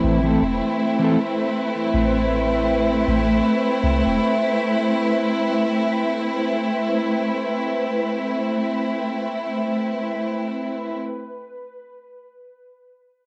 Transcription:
0, 0, Header, 1, 5, 480
1, 0, Start_track
1, 0, Key_signature, 0, "minor"
1, 0, Tempo, 500000
1, 12731, End_track
2, 0, Start_track
2, 0, Title_t, "Synth drone"
2, 0, Program_c, 0, 95
2, 0, Note_on_c, 0, 71, 91
2, 10616, Note_off_c, 0, 71, 0
2, 12731, End_track
3, 0, Start_track
3, 0, Title_t, "String section"
3, 0, Program_c, 1, 48
3, 0, Note_on_c, 1, 57, 73
3, 0, Note_on_c, 1, 60, 68
3, 0, Note_on_c, 1, 64, 81
3, 10555, Note_off_c, 1, 57, 0
3, 10555, Note_off_c, 1, 60, 0
3, 10557, Note_off_c, 1, 64, 0
3, 12731, End_track
4, 0, Start_track
4, 0, Title_t, "Clean electric guitar"
4, 0, Program_c, 2, 27
4, 0, Note_on_c, 2, 52, 82
4, 0, Note_on_c, 2, 57, 80
4, 0, Note_on_c, 2, 60, 76
4, 0, Note_on_c, 2, 71, 93
4, 174, Note_off_c, 2, 52, 0
4, 181, Note_off_c, 2, 57, 0
4, 189, Note_off_c, 2, 60, 0
4, 196, Note_off_c, 2, 71, 0
4, 221, Note_on_c, 2, 52, 71
4, 233, Note_on_c, 2, 57, 69
4, 248, Note_on_c, 2, 60, 66
4, 261, Note_on_c, 2, 69, 83
4, 383, Note_off_c, 2, 52, 0
4, 389, Note_off_c, 2, 57, 0
4, 396, Note_off_c, 2, 60, 0
4, 403, Note_off_c, 2, 69, 0
4, 949, Note_on_c, 2, 52, 91
4, 965, Note_on_c, 2, 57, 89
4, 977, Note_on_c, 2, 60, 90
4, 995, Note_on_c, 2, 69, 98
4, 1111, Note_off_c, 2, 52, 0
4, 1120, Note_off_c, 2, 57, 0
4, 1125, Note_off_c, 2, 60, 0
4, 1134, Note_off_c, 2, 69, 0
4, 12731, End_track
5, 0, Start_track
5, 0, Title_t, "808-style bass"
5, 0, Program_c, 3, 38
5, 33, Note_on_c, 3, 33, 95
5, 356, Note_off_c, 3, 33, 0
5, 399, Note_on_c, 3, 28, 96
5, 583, Note_off_c, 3, 28, 0
5, 1859, Note_on_c, 3, 33, 91
5, 2917, Note_off_c, 3, 33, 0
5, 2951, Note_on_c, 3, 33, 87
5, 3274, Note_off_c, 3, 33, 0
5, 3678, Note_on_c, 3, 36, 80
5, 3863, Note_off_c, 3, 36, 0
5, 3897, Note_on_c, 3, 28, 73
5, 4021, Note_off_c, 3, 28, 0
5, 12731, End_track
0, 0, End_of_file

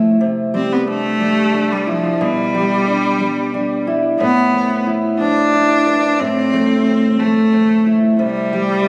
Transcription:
0, 0, Header, 1, 3, 480
1, 0, Start_track
1, 0, Key_signature, 0, "minor"
1, 0, Tempo, 664452
1, 152, Time_signature, 6, 3, 24, 8
1, 6415, End_track
2, 0, Start_track
2, 0, Title_t, "Steel-string acoustic guitar"
2, 0, Program_c, 0, 25
2, 0, Note_on_c, 0, 45, 57
2, 0, Note_on_c, 0, 57, 46
2, 0, Note_on_c, 0, 60, 46
2, 0, Note_on_c, 0, 64, 52
2, 146, Note_off_c, 0, 45, 0
2, 149, Note_on_c, 0, 48, 64
2, 196, Note_off_c, 0, 60, 0
2, 199, Note_off_c, 0, 57, 0
2, 389, Note_on_c, 0, 55, 55
2, 632, Note_on_c, 0, 62, 41
2, 653, Note_off_c, 0, 64, 0
2, 867, Note_off_c, 0, 55, 0
2, 870, Note_on_c, 0, 55, 48
2, 1109, Note_off_c, 0, 62, 0
2, 1111, Note_on_c, 0, 62, 46
2, 1350, Note_on_c, 0, 64, 43
2, 1592, Note_off_c, 0, 48, 0
2, 1596, Note_on_c, 0, 47, 64
2, 1640, Note_off_c, 0, 55, 0
2, 1641, Note_off_c, 0, 62, 0
2, 1839, Note_on_c, 0, 55, 53
2, 2080, Note_on_c, 0, 62, 40
2, 2101, Note_off_c, 0, 64, 0
2, 2304, Note_off_c, 0, 55, 0
2, 2313, Note_on_c, 0, 55, 44
2, 2548, Note_off_c, 0, 62, 0
2, 2557, Note_on_c, 0, 62, 44
2, 2797, Note_on_c, 0, 64, 46
2, 3032, Note_off_c, 0, 47, 0
2, 3035, Note_on_c, 0, 45, 63
2, 3081, Note_off_c, 0, 55, 0
2, 3083, Note_off_c, 0, 62, 0
2, 3276, Note_on_c, 0, 60, 49
2, 3514, Note_off_c, 0, 64, 0
2, 3516, Note_on_c, 0, 64, 42
2, 3757, Note_off_c, 0, 60, 0
2, 3760, Note_on_c, 0, 60, 47
2, 3995, Note_off_c, 0, 64, 0
2, 3997, Note_on_c, 0, 64, 46
2, 4239, Note_on_c, 0, 71, 48
2, 4469, Note_off_c, 0, 45, 0
2, 4478, Note_on_c, 0, 45, 65
2, 4525, Note_off_c, 0, 71, 0
2, 4719, Note_on_c, 0, 57, 54
2, 4954, Note_off_c, 0, 60, 0
2, 4957, Note_on_c, 0, 60, 45
2, 5192, Note_off_c, 0, 57, 0
2, 5201, Note_on_c, 0, 57, 48
2, 5433, Note_off_c, 0, 60, 0
2, 5436, Note_on_c, 0, 60, 49
2, 5678, Note_off_c, 0, 64, 0
2, 5681, Note_on_c, 0, 64, 45
2, 5914, Note_off_c, 0, 45, 0
2, 5917, Note_on_c, 0, 48, 65
2, 5963, Note_off_c, 0, 60, 0
2, 5966, Note_off_c, 0, 57, 0
2, 6161, Note_on_c, 0, 55, 52
2, 6415, Note_off_c, 0, 48, 0
2, 6415, Note_off_c, 0, 55, 0
2, 6415, Note_off_c, 0, 64, 0
2, 6415, End_track
3, 0, Start_track
3, 0, Title_t, "Cello"
3, 0, Program_c, 1, 42
3, 398, Note_on_c, 1, 60, 76
3, 522, Note_on_c, 1, 59, 69
3, 533, Note_off_c, 1, 60, 0
3, 633, Note_off_c, 1, 59, 0
3, 637, Note_on_c, 1, 57, 88
3, 1241, Note_on_c, 1, 55, 74
3, 1252, Note_off_c, 1, 57, 0
3, 1361, Note_on_c, 1, 53, 67
3, 1372, Note_off_c, 1, 55, 0
3, 1599, Note_on_c, 1, 55, 79
3, 1610, Note_off_c, 1, 53, 0
3, 2797, Note_off_c, 1, 55, 0
3, 3035, Note_on_c, 1, 59, 84
3, 3486, Note_off_c, 1, 59, 0
3, 3756, Note_on_c, 1, 62, 88
3, 4478, Note_on_c, 1, 60, 86
3, 4489, Note_off_c, 1, 62, 0
3, 5197, Note_on_c, 1, 57, 75
3, 5207, Note_off_c, 1, 60, 0
3, 5735, Note_off_c, 1, 57, 0
3, 5922, Note_on_c, 1, 55, 75
3, 6415, Note_off_c, 1, 55, 0
3, 6415, End_track
0, 0, End_of_file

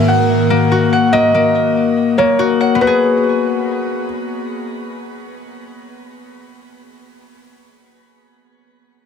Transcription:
0, 0, Header, 1, 4, 480
1, 0, Start_track
1, 0, Key_signature, 5, "minor"
1, 0, Tempo, 419580
1, 1296, Time_signature, 4, 2, 24, 8
1, 10361, End_track
2, 0, Start_track
2, 0, Title_t, "Felt piano"
2, 0, Program_c, 0, 0
2, 96, Note_on_c, 0, 78, 87
2, 1250, Note_off_c, 0, 78, 0
2, 1290, Note_on_c, 0, 75, 111
2, 2447, Note_off_c, 0, 75, 0
2, 2492, Note_on_c, 0, 73, 89
2, 2722, Note_off_c, 0, 73, 0
2, 3218, Note_on_c, 0, 71, 91
2, 4611, Note_off_c, 0, 71, 0
2, 10361, End_track
3, 0, Start_track
3, 0, Title_t, "Harp"
3, 0, Program_c, 1, 46
3, 0, Note_on_c, 1, 58, 77
3, 0, Note_on_c, 1, 68, 92
3, 0, Note_on_c, 1, 80, 95
3, 571, Note_off_c, 1, 58, 0
3, 575, Note_on_c, 1, 58, 86
3, 819, Note_on_c, 1, 66, 97
3, 856, Note_off_c, 1, 80, 0
3, 1060, Note_on_c, 1, 78, 83
3, 1292, Note_off_c, 1, 58, 0
3, 1296, Note_on_c, 1, 58, 99
3, 1494, Note_off_c, 1, 68, 0
3, 1534, Note_off_c, 1, 58, 0
3, 1538, Note_on_c, 1, 58, 79
3, 2492, Note_off_c, 1, 58, 0
3, 2497, Note_on_c, 1, 58, 82
3, 2731, Note_off_c, 1, 66, 0
3, 2735, Note_on_c, 1, 66, 93
3, 2899, Note_off_c, 1, 78, 0
3, 2982, Note_on_c, 1, 78, 81
3, 3147, Note_on_c, 1, 59, 85
3, 3211, Note_off_c, 1, 66, 0
3, 3216, Note_on_c, 1, 66, 81
3, 3285, Note_on_c, 1, 68, 94
3, 4821, Note_off_c, 1, 78, 0
3, 6175, Note_off_c, 1, 58, 0
3, 8517, Note_off_c, 1, 59, 0
3, 8586, Note_off_c, 1, 66, 0
3, 8655, Note_off_c, 1, 68, 0
3, 10361, End_track
4, 0, Start_track
4, 0, Title_t, "Analog synth pad"
4, 0, Program_c, 2, 89
4, 0, Note_on_c, 2, 44, 82
4, 0, Note_on_c, 2, 51, 74
4, 0, Note_on_c, 2, 58, 74
4, 0, Note_on_c, 2, 66, 74
4, 0, Note_on_c, 2, 70, 88
4, 1248, Note_off_c, 2, 66, 0
4, 1276, Note_off_c, 2, 58, 0
4, 1277, Note_off_c, 2, 51, 0
4, 1277, Note_off_c, 2, 70, 0
4, 1278, Note_off_c, 2, 44, 0
4, 10361, End_track
0, 0, End_of_file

